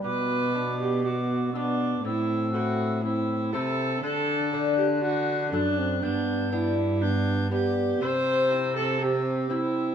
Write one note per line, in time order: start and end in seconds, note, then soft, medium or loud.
0.04 2.00 B2 soft
0.04 2.00 B2 medium
0.04 1.01 B3 medium
0.04 0.75 B4 medium
0.04 1.00 D6 medium
0.55 1.00 B3 soft
0.55 1.01 D4 soft
0.80 1.07 G4 medium
1.04 1.53 B3 medium
1.04 1.54 F#4 medium
1.04 1.53 D6 medium
1.53 2.03 B3 medium
1.53 2.01 B3 soft
1.53 2.03 D4 medium
1.53 2.01 D4 soft
1.53 2.03 D6 medium
1.53 1.58 E6 soft
2.03 3.55 A2 medium
2.03 3.50 A2 soft
2.03 3.01 C4 medium
2.03 2.52 E4 medium
2.03 3.02 E6 medium
2.53 3.00 A3 soft
2.53 3.00 C4 soft
2.53 3.00 E4 soft
2.53 3.02 F#4 medium
3.04 3.53 C4 medium
3.04 3.54 E4 medium
3.04 3.52 E6 medium
3.53 4.02 C3 medium
3.53 4.00 C3 soft
3.53 4.00 A3 soft
3.53 4.05 C4 medium
3.53 4.00 C4 soft
3.53 4.00 E4 soft
3.53 4.02 A4 medium
3.53 4.05 E6 medium
4.03 5.54 D3 medium
4.03 5.48 D3 soft
4.03 5.02 D4 medium
4.03 4.76 A4 medium
4.03 5.03 F#6 medium
4.53 4.99 A3 soft
4.53 4.99 D4 medium
4.77 4.85 G4 medium
5.01 5.51 D4 medium
5.01 5.50 F#4 medium
5.01 5.52 F#6 medium
5.51 6.04 F#2 medium
5.51 5.98 F#2 soft
5.51 5.98 A3 soft
5.51 6.00 D4 medium
5.51 5.80 D4 medium
5.51 5.99 D4 soft
5.51 6.05 F#6 medium
5.79 6.05 C4 medium
6.02 8.00 G2 medium
6.02 7.97 G2 medium
6.02 6.74 B3 medium
6.02 6.50 D4 medium
6.02 6.74 G6 medium
6.52 6.98 B3 soft
6.52 6.98 D4 soft
6.52 7.03 E4 medium
7.01 7.49 B3 medium
7.01 7.51 D4 medium
7.01 7.48 G6 medium
7.51 8.00 B3 medium
7.51 7.97 B3 soft
7.51 7.98 D4 soft
7.51 8.04 G4 medium
7.51 8.01 G6 medium
8.01 9.95 C3 medium
8.01 8.97 C4 medium
8.01 8.76 C5 medium
8.01 8.97 E6 medium
8.51 8.97 C4 soft
8.51 8.97 E4 medium
8.76 9.04 A4 medium
9.01 9.49 C4 medium
9.01 9.54 G4 medium
9.01 9.48 E6 medium
9.48 9.95 C4 soft
9.48 9.95 C4 medium
9.48 9.95 E4 medium
9.48 9.95 E6 medium